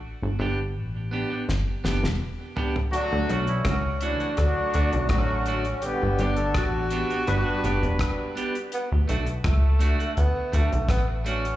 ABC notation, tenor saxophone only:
X:1
M:4/4
L:1/8
Q:1/4=83
K:D
V:1 name="Tenor saxophone"
z8 | D C C D3 C2 | B, D F4- F z | B, A, A,2 B, A, B, C |]